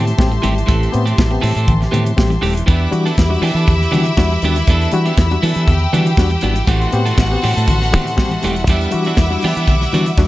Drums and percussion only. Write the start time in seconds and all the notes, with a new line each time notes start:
0.07 closed hi-hat
0.19 kick, snare, high conga
0.32 closed hi-hat
0.44 closed hi-hat, high conga
0.58 closed hi-hat
0.68 kick, closed hi-hat, muted conga
0.83 closed hi-hat
0.93 closed hi-hat, muted conga
1.07 closed hi-hat
1.18 kick, snare, high conga
1.43 open hi-hat, muted conga
1.57 closed hi-hat
1.68 kick, closed hi-hat, low conga
1.82 snare, closed hi-hat
1.94 closed hi-hat, muted conga, low conga
2.06 closed hi-hat
2.18 kick, snare, high conga
2.31 closed hi-hat
2.43 open hi-hat, high conga
2.57 closed hi-hat
2.68 kick, closed hi-hat, muted conga
2.92 closed hi-hat
3.07 closed hi-hat
3.18 kick, snare, high conga
3.43 open hi-hat, muted conga
3.57 closed hi-hat
3.68 kick, closed hi-hat, low conga
3.81 snare
3.94 closed hi-hat, muted conga, low conga
4.05 closed hi-hat
4.17 kick, snare, high conga
4.30 closed hi-hat
4.42 closed hi-hat, high conga
4.56 closed hi-hat
4.67 kick, closed hi-hat, muted conga
4.81 closed hi-hat
4.91 closed hi-hat, muted conga
5.05 closed hi-hat
5.18 kick, snare, high conga
5.31 closed hi-hat
5.43 open hi-hat, muted conga
5.57 closed hi-hat
5.68 kick, closed hi-hat, low conga
5.94 closed hi-hat, muted conga, low conga
6.06 closed hi-hat
6.17 kick, snare, high conga
6.30 closed hi-hat
6.41 closed hi-hat, high conga
6.55 closed hi-hat
6.67 kick, closed hi-hat, muted conga
6.82 closed hi-hat
6.93 closed hi-hat
7.06 closed hi-hat
7.18 kick, snare, high conga
7.43 open hi-hat, muted conga
7.57 closed hi-hat
7.68 kick, closed hi-hat, low conga
7.81 snare, closed hi-hat
7.93 closed hi-hat, muted conga, low conga
8.07 closed hi-hat
8.18 kick, snare, high conga
8.31 closed hi-hat
8.43 closed hi-hat, high conga
8.56 closed hi-hat
8.67 kick, closed hi-hat, muted conga
8.81 closed hi-hat
8.91 closed hi-hat
9.05 closed hi-hat
9.17 kick, snare, high conga
9.42 open hi-hat, muted conga
9.56 closed hi-hat
9.68 kick, closed hi-hat, low conga
9.81 snare, closed hi-hat
9.93 closed hi-hat, muted conga, low conga
10.06 closed hi-hat
10.18 kick, snare, high conga